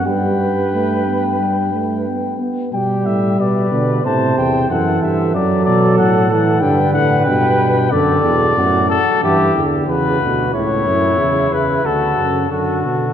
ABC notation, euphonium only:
X:1
M:4/4
L:1/8
Q:1/4=92
K:G
V:1 name="Euphonium" clef=bass
G, z A, B, G, A, B, B, | G,3 D, C,2 E,2 | F,3 E, D,2 B,,2 | D, B,, A,, z E, D, ^C, B,, |
A,, A,, ^C, C, D, C, D,2 |]